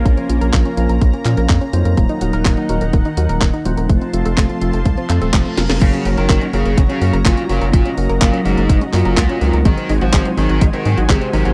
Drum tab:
CC |----------------|----------------|----------------|x---------------|
HH |xxxxxxxxxxxxxxxx|xxxxxxxxxxxxxxxx|xxxxxxxxxxxxxxxx|xxoxxxoxxxoxxxox|
CP |----x-----x-x---|----x-------x---|----x-----x-x---|----x-------x---|
SD |----------------|----------------|--------------oo|----------------|
BD |o---o---o---o---|o---o---o---o---|o---o---o---o---|o---o---o---o---|

CC |----------------|----------------|
HH |xxoxxxoxxxoxxxox|xxoxxxoxxxoxxxox|
CP |----x-----x-x---|----x-------x---|
SD |----------------|----------------|
BD |o---o---o---o---|o---o---o---o---|